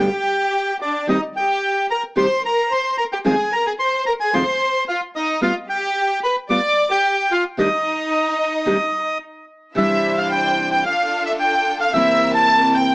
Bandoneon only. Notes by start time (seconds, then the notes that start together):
0.00 G5
0.82 D5
1.09 D#5
1.37 G5
1.91 A#5
2.17 C6
2.46 A#5
2.72 C6
2.98 A#5
3.12 G5
3.26 G#5
3.53 A#5
3.67 G#5
3.79 C6
4.06 A#5
4.20 G#5
4.34 C6
4.88 F5
5.16 D#5
5.42 F5
5.70 G5
6.24 B5
6.50 D6
6.91 G5
7.32 F5
7.59 D#5
9.77 E5
10.18 F5
10.32 G5
10.72 G5
10.86 F5
11.26 E5
11.40 G5
11.81 F5
11.94 E5
12.34 A5
12.74 G5